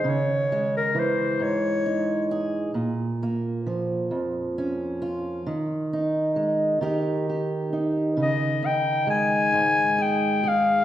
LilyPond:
<<
  \new Staff \with { instrumentName = "Clarinet" } { \time 6/8 \key des \lydian \tempo 4. = 44 des''8. bes'16 c''8 des''4 r8 | r2. | r2. | ees''8 g''8 aes''4 g''8 f''8 | }
  \new Staff \with { instrumentName = "Steel-string acoustic guitar" } { \time 6/8 \key des \lydian << { r8 aes4. ees'8 aes'8 | r8 bes4. des'8 f'8 | r8 ees'4 <ees' g' bes'>8 g'4 | r8 ees'4. aes'8 aes'8 | } \\ { <des ees>4 fes8 aes,4. | bes,4 f8 f,4. | ees4 aes8 ees4 ees'8 | des4 aes8 aes,4. | } >> }
>>